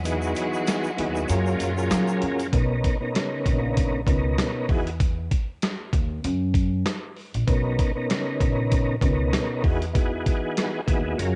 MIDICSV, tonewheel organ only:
0, 0, Header, 1, 2, 480
1, 0, Start_track
1, 0, Key_signature, 5, "major"
1, 0, Tempo, 618557
1, 40, Time_signature, 4, 2, 24, 8
1, 8811, End_track
2, 0, Start_track
2, 0, Title_t, "Tonewheel organ"
2, 0, Program_c, 0, 16
2, 27, Note_on_c, 0, 52, 91
2, 32, Note_on_c, 0, 59, 80
2, 36, Note_on_c, 0, 63, 84
2, 41, Note_on_c, 0, 66, 83
2, 45, Note_on_c, 0, 68, 104
2, 703, Note_off_c, 0, 52, 0
2, 706, Note_off_c, 0, 59, 0
2, 708, Note_off_c, 0, 63, 0
2, 710, Note_off_c, 0, 66, 0
2, 712, Note_off_c, 0, 68, 0
2, 748, Note_on_c, 0, 64, 92
2, 752, Note_on_c, 0, 59, 84
2, 756, Note_on_c, 0, 63, 93
2, 761, Note_on_c, 0, 66, 87
2, 765, Note_on_c, 0, 68, 106
2, 993, Note_on_c, 0, 54, 92
2, 994, Note_off_c, 0, 64, 0
2, 996, Note_off_c, 0, 59, 0
2, 997, Note_off_c, 0, 68, 0
2, 997, Note_on_c, 0, 61, 86
2, 998, Note_off_c, 0, 63, 0
2, 1001, Note_off_c, 0, 66, 0
2, 1002, Note_on_c, 0, 65, 89
2, 1006, Note_on_c, 0, 68, 86
2, 1010, Note_on_c, 0, 70, 109
2, 1339, Note_off_c, 0, 54, 0
2, 1341, Note_off_c, 0, 61, 0
2, 1343, Note_off_c, 0, 65, 0
2, 1346, Note_off_c, 0, 68, 0
2, 1347, Note_off_c, 0, 70, 0
2, 1365, Note_on_c, 0, 54, 88
2, 1369, Note_on_c, 0, 61, 87
2, 1374, Note_on_c, 0, 65, 81
2, 1378, Note_on_c, 0, 68, 95
2, 1382, Note_on_c, 0, 70, 112
2, 1913, Note_off_c, 0, 54, 0
2, 1915, Note_off_c, 0, 61, 0
2, 1918, Note_off_c, 0, 65, 0
2, 1920, Note_off_c, 0, 68, 0
2, 1922, Note_off_c, 0, 70, 0
2, 1954, Note_on_c, 0, 47, 91
2, 1958, Note_on_c, 0, 59, 80
2, 1963, Note_on_c, 0, 61, 86
2, 1967, Note_on_c, 0, 63, 83
2, 1971, Note_on_c, 0, 70, 99
2, 2299, Note_off_c, 0, 47, 0
2, 2302, Note_off_c, 0, 59, 0
2, 2304, Note_off_c, 0, 61, 0
2, 2306, Note_off_c, 0, 63, 0
2, 2308, Note_off_c, 0, 70, 0
2, 2328, Note_on_c, 0, 47, 88
2, 2332, Note_on_c, 0, 59, 80
2, 2337, Note_on_c, 0, 61, 81
2, 2341, Note_on_c, 0, 63, 82
2, 2344, Note_on_c, 0, 70, 99
2, 2429, Note_off_c, 0, 59, 0
2, 2434, Note_off_c, 0, 61, 0
2, 2434, Note_on_c, 0, 49, 98
2, 2438, Note_off_c, 0, 63, 0
2, 2439, Note_on_c, 0, 59, 86
2, 2442, Note_off_c, 0, 70, 0
2, 2443, Note_on_c, 0, 61, 84
2, 2447, Note_on_c, 0, 63, 80
2, 2452, Note_on_c, 0, 70, 97
2, 2476, Note_off_c, 0, 47, 0
2, 3107, Note_off_c, 0, 49, 0
2, 3109, Note_off_c, 0, 59, 0
2, 3111, Note_off_c, 0, 61, 0
2, 3113, Note_off_c, 0, 63, 0
2, 3115, Note_off_c, 0, 70, 0
2, 3150, Note_on_c, 0, 47, 88
2, 3155, Note_on_c, 0, 59, 85
2, 3158, Note_on_c, 0, 61, 85
2, 3163, Note_on_c, 0, 63, 81
2, 3167, Note_on_c, 0, 70, 99
2, 3625, Note_off_c, 0, 59, 0
2, 3629, Note_off_c, 0, 63, 0
2, 3630, Note_on_c, 0, 52, 101
2, 3634, Note_on_c, 0, 59, 92
2, 3635, Note_off_c, 0, 47, 0
2, 3639, Note_off_c, 0, 61, 0
2, 3639, Note_on_c, 0, 63, 86
2, 3643, Note_on_c, 0, 66, 86
2, 3644, Note_off_c, 0, 70, 0
2, 3647, Note_on_c, 0, 68, 102
2, 3801, Note_off_c, 0, 52, 0
2, 3803, Note_off_c, 0, 59, 0
2, 3805, Note_off_c, 0, 63, 0
2, 3807, Note_off_c, 0, 66, 0
2, 3809, Note_off_c, 0, 68, 0
2, 5795, Note_on_c, 0, 47, 90
2, 5799, Note_on_c, 0, 59, 81
2, 5803, Note_on_c, 0, 61, 87
2, 5808, Note_on_c, 0, 63, 83
2, 5812, Note_on_c, 0, 70, 97
2, 6140, Note_off_c, 0, 47, 0
2, 6142, Note_off_c, 0, 59, 0
2, 6144, Note_off_c, 0, 61, 0
2, 6146, Note_off_c, 0, 63, 0
2, 6148, Note_off_c, 0, 70, 0
2, 6168, Note_on_c, 0, 47, 89
2, 6172, Note_on_c, 0, 59, 84
2, 6177, Note_on_c, 0, 61, 85
2, 6180, Note_on_c, 0, 63, 82
2, 6185, Note_on_c, 0, 70, 97
2, 6270, Note_off_c, 0, 59, 0
2, 6275, Note_off_c, 0, 61, 0
2, 6275, Note_on_c, 0, 49, 100
2, 6279, Note_off_c, 0, 63, 0
2, 6279, Note_on_c, 0, 59, 87
2, 6283, Note_off_c, 0, 70, 0
2, 6284, Note_on_c, 0, 61, 89
2, 6288, Note_on_c, 0, 63, 81
2, 6292, Note_on_c, 0, 70, 106
2, 6316, Note_off_c, 0, 47, 0
2, 6947, Note_off_c, 0, 49, 0
2, 6949, Note_off_c, 0, 59, 0
2, 6951, Note_off_c, 0, 61, 0
2, 6954, Note_off_c, 0, 63, 0
2, 6956, Note_off_c, 0, 70, 0
2, 6991, Note_on_c, 0, 47, 90
2, 6994, Note_on_c, 0, 59, 82
2, 6999, Note_on_c, 0, 61, 87
2, 7003, Note_on_c, 0, 63, 82
2, 7008, Note_on_c, 0, 70, 103
2, 7465, Note_off_c, 0, 59, 0
2, 7469, Note_off_c, 0, 63, 0
2, 7470, Note_on_c, 0, 52, 99
2, 7474, Note_on_c, 0, 59, 89
2, 7476, Note_off_c, 0, 47, 0
2, 7478, Note_on_c, 0, 63, 89
2, 7480, Note_off_c, 0, 61, 0
2, 7482, Note_on_c, 0, 66, 89
2, 7484, Note_off_c, 0, 70, 0
2, 7487, Note_on_c, 0, 68, 102
2, 7640, Note_off_c, 0, 52, 0
2, 7643, Note_off_c, 0, 59, 0
2, 7645, Note_off_c, 0, 63, 0
2, 7647, Note_off_c, 0, 66, 0
2, 7649, Note_off_c, 0, 68, 0
2, 7707, Note_on_c, 0, 52, 87
2, 7711, Note_on_c, 0, 59, 74
2, 7715, Note_on_c, 0, 63, 82
2, 7720, Note_on_c, 0, 66, 80
2, 7724, Note_on_c, 0, 68, 101
2, 8383, Note_off_c, 0, 52, 0
2, 8385, Note_off_c, 0, 59, 0
2, 8387, Note_off_c, 0, 63, 0
2, 8389, Note_off_c, 0, 66, 0
2, 8391, Note_off_c, 0, 68, 0
2, 8427, Note_on_c, 0, 64, 90
2, 8432, Note_on_c, 0, 59, 83
2, 8436, Note_on_c, 0, 63, 88
2, 8440, Note_on_c, 0, 66, 86
2, 8445, Note_on_c, 0, 68, 101
2, 8673, Note_on_c, 0, 54, 88
2, 8674, Note_off_c, 0, 64, 0
2, 8676, Note_off_c, 0, 59, 0
2, 8676, Note_off_c, 0, 68, 0
2, 8677, Note_on_c, 0, 61, 84
2, 8678, Note_off_c, 0, 63, 0
2, 8680, Note_off_c, 0, 66, 0
2, 8681, Note_on_c, 0, 65, 84
2, 8686, Note_on_c, 0, 68, 83
2, 8690, Note_on_c, 0, 70, 101
2, 8811, Note_off_c, 0, 54, 0
2, 8811, Note_off_c, 0, 61, 0
2, 8811, Note_off_c, 0, 65, 0
2, 8811, Note_off_c, 0, 68, 0
2, 8811, Note_off_c, 0, 70, 0
2, 8811, End_track
0, 0, End_of_file